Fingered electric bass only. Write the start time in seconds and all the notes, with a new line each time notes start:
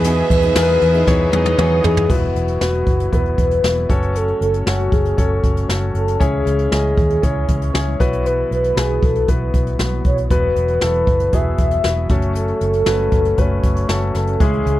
Already playing: E2
0.30 E2
0.56 E2
0.82 E2
1.07 E2
1.33 E2
1.58 E2
1.84 E2
2.10 E1
2.35 E1
2.61 E1
2.87 F#1
3.12 E1
3.38 E1
3.64 E1
3.90 F#1
4.41 F#1
4.67 F#1
4.92 F#1
5.18 F#1
5.44 F#1
5.69 F#1
5.95 F#1
6.20 C#2
6.46 C#2
6.72 C#2
6.98 D#2
7.23 C#2
7.49 C#2
7.74 C#2
8.00 B1
8.51 B1
8.76 B1
9.03 B1
9.28 B1
9.54 B1
9.79 B1
10.05 B1
10.30 E1
10.56 E1
10.82 E1
11.07 F#1
11.33 E1
11.58 E1
11.84 E1
12.10 F#1
12.61 F#1
12.87 F#1
13.12 F#1
13.38 F#1
13.64 F#1
13.89 F#1
14.15 F#1
14.40 C#2
14.66 C#2